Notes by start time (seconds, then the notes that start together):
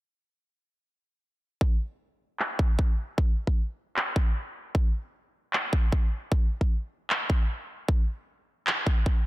1.61 kick
2.39 clap
2.59 kick
2.79 kick
3.18 kick
3.47 kick
3.96 clap
4.16 kick
4.75 kick
5.53 clap
5.73 kick
5.92 kick
6.32 kick
6.61 kick
7.10 clap
7.30 kick
7.88 kick
8.67 clap
8.87 kick
9.06 kick